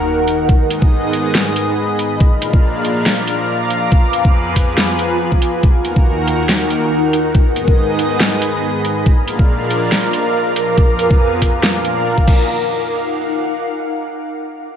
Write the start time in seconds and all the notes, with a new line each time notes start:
Already playing: D#2 D#3 A#3 D#4 F#4 A#4 F#5, sub drop
0.28 closed hi-hat
0.49 G#2 B3 G#4 D#5, kick
0.70 closed hi-hat
0.82 kick
1.13 closed hi-hat
1.35 snare
1.56 closed hi-hat
1.99 closed hi-hat
2.20 A#2 F3 D4 A#4 F5, kick
2.30 A#5
2.42 closed hi-hat
2.46 F5
2.53 kick
2.73 D6
2.85 closed hi-hat
3.06 snare
3.27 closed hi-hat
3.70 closed hi-hat
3.92 F2 B3 F4 G#4 B4, kick
4.13 closed hi-hat
4.25 kick
4.56 kick, closed hi-hat
4.70 G#5
4.78 snare
4.99 closed hi-hat
5.32 kick
5.42 closed hi-hat
5.63 D#2 D#3 A#3 D#4 F#4 A#4, kick
5.85 closed hi-hat
5.96 kick
6.13 F#5
6.28 closed hi-hat
6.49 snare
6.70 closed hi-hat
7.13 closed hi-hat
7.35 G#2 B3 G#4 D#5, kick
7.56 closed hi-hat
7.68 kick
7.99 closed hi-hat
8.20 snare
8.42 closed hi-hat
8.85 closed hi-hat
9.06 A#2 F3 D4 A#4 F5, kick
9.13 A#5
9.20 D6
9.28 F5, closed hi-hat
9.39 kick
9.70 closed hi-hat
9.92 snare
10.13 closed hi-hat
10.56 closed hi-hat
10.78 F2 B3 G#4, kick
10.99 closed hi-hat
11.11 kick
11.42 kick, closed hi-hat
11.63 A#2 D4 A#4 F5, snare
11.85 closed hi-hat
12.18 kick
12.27 D#4, kick, crash
12.34 A#4
12.62 F5